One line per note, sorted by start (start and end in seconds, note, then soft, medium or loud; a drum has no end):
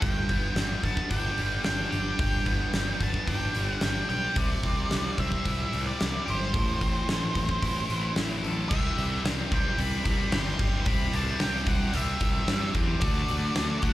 0.01 0.20 G1 medium
0.01 1.38 G2 medium
0.01 0.84 G5 medium
0.01 kick loud
0.01 open hi-hat medium
0.29 0.47 G1 medium
0.29 0.83 B3 medium
0.29 kick medium
0.29 open hi-hat soft
0.55 0.73 G1 medium
0.55 1.38 G3 medium
0.55 snare loud
0.55 open hi-hat medium
0.83 1.01 G1 medium
0.83 2.20 B3 medium
0.83 1.09 A5 medium
0.83 kick medium
0.83 open hi-hat soft
0.97 kick medium
1.11 1.28 G1 medium
1.11 1.64 D4 medium
1.11 1.63 G5 loud
1.11 kick loud
1.11 open hi-hat medium
1.38 1.56 G1 medium
1.38 2.73 G3 medium
1.38 open hi-hat soft
1.64 1.83 G1 medium
1.64 3.01 D4 medium
1.64 1.90 G5 loud
1.64 snare loud
1.64 open hi-hat medium
1.90 2.10 G1 medium
1.90 4.08 G4 medium
1.90 2.19 G5 loud
1.90 open hi-hat medium
2.17 2.37 G1 medium
2.17 3.54 G2 medium
2.17 3.03 G5 loud
2.17 kick loud
2.17 open hi-hat medium
2.46 2.64 G1 medium
2.46 2.99 B3 medium
2.46 kick medium
2.46 open hi-hat medium
2.73 2.92 G1 medium
2.73 3.53 G3 medium
2.73 snare loud
2.73 open hi-hat medium
3.00 3.18 G1 medium
3.00 4.36 B3 medium
3.00 3.28 A5 loud
3.00 kick medium
3.00 open hi-hat soft
3.14 kick medium
3.27 3.46 G1 medium
3.27 3.81 D4 medium
3.27 3.69 G5 medium
3.27 kick medium
3.27 open hi-hat medium
3.54 3.73 G1 medium
3.54 4.36 G3 medium
3.54 open hi-hat medium
3.69 3.82 F#5 medium
3.81 4.00 G1 medium
3.81 4.37 D4 medium
3.81 4.08 G5 medium
3.81 snare loud
3.81 open hi-hat medium
4.09 4.27 B1 medium
4.09 4.36 G4 medium
4.09 4.37 G5 loud
4.09 open hi-hat soft
4.36 4.54 C2 medium
4.36 5.72 C3 medium
4.36 5.19 D5 medium
4.36 kick loud
4.36 open hi-hat medium
4.63 4.82 C2 medium
4.63 5.18 C4 medium
4.63 kick medium
4.63 open hi-hat medium
4.90 5.09 C2 medium
4.90 5.71 G3 medium
4.90 snare loud
4.90 open hi-hat medium
5.18 5.36 C2 loud
5.18 6.82 C4 medium
5.18 5.86 E5 medium
5.18 kick medium
5.18 open hi-hat soft
5.32 kick medium
5.45 5.63 C2 medium
5.45 5.98 E4 medium
5.45 kick medium
5.45 open hi-hat medium
5.72 5.91 C2 medium
5.72 6.54 G3 medium
5.72 open hi-hat soft
5.87 6.28 D5 medium
5.99 6.18 C2 medium
5.99 7.62 E4 medium
5.99 snare loud
5.99 open hi-hat medium
6.26 6.54 G1 medium
6.26 6.53 G4 medium
6.26 open hi-hat soft
6.30 8.14 C5 medium
6.54 6.72 A1 medium
6.54 7.90 A2 medium
6.54 kick loud
6.54 open hi-hat medium
6.81 6.99 A1 medium
6.81 7.35 C4 medium
6.81 kick medium
6.81 open hi-hat soft
7.08 7.26 A1 medium
7.08 7.89 E3 medium
7.08 snare loud
7.08 open hi-hat medium
7.35 7.53 A1 medium
7.35 8.69 C4 medium
7.35 kick medium
7.35 open hi-hat medium
7.49 kick medium
7.62 7.80 A1 loud
7.62 8.15 E4 medium
7.62 kick medium
7.62 open hi-hat medium
7.89 8.07 A1 medium
7.89 8.69 E3 medium
7.89 open hi-hat medium
8.16 8.34 A1 medium
8.16 8.70 E4 medium
8.16 snare loud
8.16 open hi-hat medium
8.43 8.61 A1 medium
8.43 8.70 A4 medium
8.43 open hi-hat soft
8.69 8.90 C2 medium
8.69 8.96 C3 medium
8.69 8.98 E3 loud
8.69 8.98 G3 loud
8.69 8.99 C4 medium
8.69 8.99 G4 loud
8.69 9.20 E5 loud
8.69 kick loud
8.69 crash loud
8.97 9.16 C2 medium
8.97 9.23 C3 medium
8.97 9.24 E3 medium
8.97 9.25 G3 medium
8.97 9.26 C4 medium
8.97 9.26 G4 medium
8.97 open hi-hat medium
9.24 9.44 C2 medium
9.24 9.50 C3 medium
9.24 9.51 E3 medium
9.24 9.51 G3 medium
9.24 9.51 C4 medium
9.24 9.52 G4 medium
9.24 snare loud
9.24 open hi-hat medium
9.50 9.71 C2 loud
9.50 9.76 C3 medium
9.50 9.77 E3 medium
9.50 9.77 G3 medium
9.50 9.78 C4 medium
9.50 9.79 G4 medium
9.50 kick medium
9.50 open hi-hat medium
9.55 9.78 G5 medium
9.77 9.97 C2 loud
9.77 10.02 C3 medium
9.77 10.04 E3 medium
9.77 10.04 G3 medium
9.77 10.05 C4 medium
9.77 10.05 G4 medium
9.77 10.34 B5 medium
9.77 open hi-hat medium
10.04 10.24 C2 medium
10.04 10.29 C3 medium
10.04 10.30 E3 medium
10.04 10.31 G3 loud
10.04 10.32 C4 loud
10.04 10.32 G4 loud
10.04 kick medium
10.04 open hi-hat medium
10.30 10.52 G1 medium
10.30 10.57 C3 medium
10.30 10.58 E3 medium
10.30 10.58 G3 medium
10.30 10.59 C4 medium
10.30 10.59 G4 medium
10.30 10.84 C6 loud
10.30 snare loud
10.30 open hi-hat medium
10.58 10.79 G1 medium
10.58 10.85 C3 medium
10.58 10.86 E3 medium
10.58 10.86 G3 medium
10.58 10.87 C4 medium
10.58 10.87 G4 medium
10.58 kick medium
10.58 open hi-hat medium
10.86 11.06 C2 loud
10.86 11.12 C3 loud
10.86 11.12 E3 medium
10.86 11.13 G3 loud
10.86 11.14 C4 loud
10.86 11.14 G4 loud
10.86 11.15 B5 loud
10.86 kick loud
10.86 open hi-hat medium
11.13 11.33 C2 medium
11.13 11.38 C3 medium
11.13 11.39 E3 medium
11.13 11.40 G3 medium
11.13 11.40 C4 medium
11.13 11.40 G4 medium
11.13 11.41 A5 medium
11.13 open hi-hat medium
11.39 11.60 C2 medium
11.39 11.65 C3 loud
11.39 11.65 E3 medium
11.39 11.65 G3 medium
11.39 11.66 C4 medium
11.39 11.66 G4 loud
11.39 11.68 G5 medium
11.39 snare loud
11.39 open hi-hat medium
11.66 11.86 C2 medium
11.66 11.90 C3 medium
11.66 11.92 E3 medium
11.66 11.92 G3 medium
11.66 11.92 C4 medium
11.66 11.93 G4 medium
11.66 11.96 F#5 medium
11.66 kick medium
11.66 open hi-hat medium
11.91 12.14 C2 medium
11.91 12.18 C3 medium
11.91 12.19 E3 medium
11.91 12.19 G3 medium
11.91 12.20 C4 medium
11.91 12.20 G4 loud
11.91 12.72 E5 medium
11.91 open hi-hat medium
12.19 12.40 C2 medium
12.19 12.45 C3 loud
12.19 12.46 E3 medium
12.19 12.47 G3 loud
12.19 12.46 C4 loud
12.19 12.47 G4 loud
12.19 kick medium
12.19 open hi-hat medium
12.46 12.68 G2 medium
12.46 12.73 C3 medium
12.46 12.72 E3 medium
12.46 12.73 G3 medium
12.46 12.74 C4 medium
12.46 12.74 G4 loud
12.46 snare loud
12.46 open hi-hat medium
12.73 12.94 E2 medium
12.73 13.00 C3 medium
12.73 13.00 E3 medium
12.73 13.01 G3 medium
12.73 13.01 C4 medium
12.73 13.01 G4 medium
12.73 kick medium
12.73 open hi-hat medium
13.01 13.22 D2 medium
13.01 13.28 D3 medium
13.01 13.29 A3 loud
13.01 13.29 D4 loud
13.01 13.30 F#4 loud
13.01 13.85 D5 medium
13.01 kick loud
13.01 open hi-hat medium
13.28 13.49 D2 medium
13.28 13.56 D3 medium
13.28 13.57 A3 medium
13.28 13.57 D4 medium
13.28 13.57 F#4 medium
13.28 open hi-hat medium
13.56 13.76 D2 medium
13.56 13.83 D3 medium
13.56 13.84 A3 medium
13.56 13.84 D4 loud
13.56 13.84 F#4 loud
13.56 snare loud
13.56 open hi-hat medium
13.82 13.93 D2 medium
13.82 13.93 D3 medium
13.82 13.93 A3 medium
13.82 13.93 D4 loud
13.82 13.93 F#4 medium
13.82 13.93 F#5 medium
13.82 kick medium
13.82 open hi-hat medium